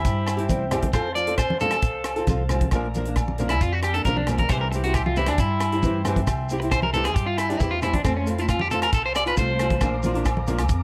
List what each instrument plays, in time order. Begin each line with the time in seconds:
Already playing: clean electric guitar E4, tonewheel organ C5 E5 G5
0.05 upright bass G2, kick, closed hi-hat, shekere
0.27 cross-stick, closed hi-hat, low agogo, shekere
0.37 nylon-string guitar C4 E4 G4, closed hi-hat
0.49 upright bass C2, nylon-string guitar G3 C4 E4, kick, closed hi-hat, high conga, shekere
0.71 nylon-string guitar G3 C4 E4 G4, cross-stick, closed hi-hat, low conga, low agogo, shekere
0.82 kick, closed hi-hat, high conga
0.93 upright bass F2, nylon-string guitar F3 C4 F4 A4, tonewheel organ C5 A5, clean electric guitar C5, kick, cross-stick, closed hi-hat, low agogo, shekere
1.15 nylon-string guitar F3 C4 F4, clean electric guitar D5, closed hi-hat, shekere
1.27 nylon-string guitar C4 F4 A4, closed hi-hat
1.38 clean electric guitar C5, kick, cross-stick, closed hi-hat, low agogo, shekere
1.50 high conga
1.60 nylon-string guitar F3 C4 F4 A4, clean electric guitar A4, closed hi-hat, low conga, shekere
1.71 cross-stick, closed hi-hat, low agogo
1.82 upright bass C2, kick, closed hi-hat, shekere
2.04 cross-stick, closed hi-hat, low agogo
2.16 nylon-string guitar C4 F4 A4, closed hi-hat
2.27 upright bass C2, nylon-string guitar F3 C4 F4 A4, kick, closed hi-hat, high conga, shekere
2.49 nylon-string guitar F3 C4 F4, cross-stick, closed hi-hat, low conga, low agogo, shekere
2.61 kick, closed hi-hat, high conga
2.71 upright bass A#1, nylon-string guitar F3 A#3 D4 A#4, tonewheel organ D5 A#5, kick, cross-stick, closed hi-hat, low agogo, shekere
2.94 nylon-string guitar F3 A#3 D4 A#4, closed hi-hat, high conga, shekere
3.05 nylon-string guitar A#3 D4, closed hi-hat
3.16 kick, cross-stick, closed hi-hat, low agogo, shekere
3.28 high conga
3.38 nylon-string guitar F3 A#3 D4 A#4, closed hi-hat, low conga, shekere
3.49 clean electric guitar E4, cross-stick, closed hi-hat, low agogo
3.61 upright bass F2, clean electric guitar F4, kick, closed hi-hat, shekere
3.73 clean electric guitar F#4
3.83 clean electric guitar G4, cross-stick, closed hi-hat, low agogo, shekere
3.94 nylon-string guitar A#3 D4, clean electric guitar A4, closed hi-hat
4.05 upright bass B1, nylon-string guitar F3 A#3 D4, clean electric guitar A#4, kick, closed hi-hat, high conga, shekere
4.09 nylon-string guitar A#4
4.16 clean electric guitar D4, high conga
4.27 nylon-string guitar F3 A#3 D4, cross-stick, closed hi-hat, low conga, low agogo, shekere
4.31 nylon-string guitar A#4
4.38 clean electric guitar A#4, kick, closed hi-hat, high conga
4.49 upright bass C2, nylon-string guitar E3 C4 E4 G4, clean electric guitar C5, tonewheel organ E5 G5, kick, cross-stick, closed hi-hat, low agogo, shekere
4.61 clean electric guitar A#4
4.72 nylon-string guitar E3 C4 E4, muted clean electric guitar stroke, closed hi-hat, shekere
4.76 nylon-string guitar G4
4.83 nylon-string guitar E4 G4, clean electric guitar F#4, closed hi-hat
4.88 nylon-string guitar C4
4.94 clean electric guitar G4, kick, cross-stick, closed hi-hat, low agogo, shekere
5.06 clean electric guitar F4, high conga
5.16 nylon-string guitar E3 C4 E4 G4, clean electric guitar E4, closed hi-hat, low conga, shekere
5.26 clean electric guitar D4, cross-stick, closed hi-hat, low agogo
5.38 upright bass G2, clean electric guitar E4, kick, closed hi-hat, shekere
5.60 cross-stick, closed hi-hat, low agogo, shekere
5.72 nylon-string guitar C4 E4 G4, closed hi-hat
5.83 upright bass G2, nylon-string guitar E3 C4 E4 G4, kick, closed hi-hat, high conga, shekere
6.05 nylon-string guitar E3 C4 E4 G4, cross-stick, closed hi-hat, low conga, low agogo, shekere
6.16 kick, closed hi-hat, high conga
6.27 upright bass C2, kick, cross-stick, closed hi-hat, low agogo, shekere
6.49 nylon-string guitar C4 E4 G4, closed hi-hat, shekere
6.60 nylon-string guitar E4 G4, muted clean electric guitar stroke, closed hi-hat
6.64 nylon-string guitar C4
6.71 clean electric guitar C5, kick, cross-stick, closed hi-hat, low agogo, shekere
6.82 clean electric guitar A#4, high conga
6.94 nylon-string guitar E3 C4 E4 G4, clean electric guitar A4, closed hi-hat, low conga, shekere
7.04 clean electric guitar G#4, cross-stick, closed hi-hat, low agogo
7.15 upright bass G2, clean electric guitar G4, kick, closed hi-hat, shekere
7.26 clean electric guitar F4
7.37 clean electric guitar E4, cross-stick, closed hi-hat, low agogo, shekere
7.49 nylon-string guitar C4 E4 G4, clean electric guitar D4, closed hi-hat
7.60 upright bass E2, nylon-string guitar E3 C4 E4 G4, clean electric guitar E4, kick, closed hi-hat, high conga, shekere
7.71 clean electric guitar F4
7.82 nylon-string guitar C4 E4 G4, clean electric guitar E4, muted nylon-string guitar stroke, cross-stick, closed hi-hat, low conga, low agogo, shekere
7.93 clean electric guitar D4, kick, closed hi-hat, high conga
8.04 upright bass F2, nylon-string guitar A3 C4, clean electric guitar C4, tonewheel organ F5 A5, muted nylon-string guitar stroke, kick, cross-stick, closed hi-hat, low agogo, shekere
8.17 clean electric guitar C#4
8.27 nylon-string guitar A3 C4 F4, closed hi-hat, shekere
8.38 nylon-string guitar C4 F4, clean electric guitar E4, closed hi-hat
8.49 clean electric guitar F4, kick, cross-stick, closed hi-hat, low agogo, shekere
8.59 clean electric guitar G4, high conga
8.71 nylon-string guitar A3 C4 F4, clean electric guitar A4, closed hi-hat, low conga, shekere
8.82 clean electric guitar A#4, cross-stick, closed hi-hat, low agogo
8.92 upright bass C2, clean electric guitar A4, kick, closed hi-hat, shekere
9.06 clean electric guitar C5
9.15 clean electric guitar D5, cross-stick, closed hi-hat, low agogo, shekere
9.26 nylon-string guitar C4 F4, clean electric guitar B4, closed hi-hat
9.37 upright bass C2, nylon-string guitar A3 C4 F4, clean electric guitar C5, kick, closed hi-hat, high conga, shekere
9.59 nylon-string guitar A3 C4 F4, cross-stick, closed hi-hat, low agogo, shekere
9.70 kick, closed hi-hat, high conga
9.81 upright bass A#1, nylon-string guitar F3 A#3 D4 F4, tonewheel organ A#5 D6, kick, cross-stick, closed hi-hat, low agogo, shekere
10.03 nylon-string guitar F3 A#3 D4 F4, closed hi-hat, high conga, shekere
10.14 nylon-string guitar A#3 D4 F4, closed hi-hat
10.25 kick, cross-stick, closed hi-hat, low agogo, shekere
10.37 high conga
10.47 nylon-string guitar F3 A#3 D4 F4, closed hi-hat, low conga, shekere
10.59 cross-stick, closed hi-hat, low agogo
10.69 upright bass F2, kick, closed hi-hat, shekere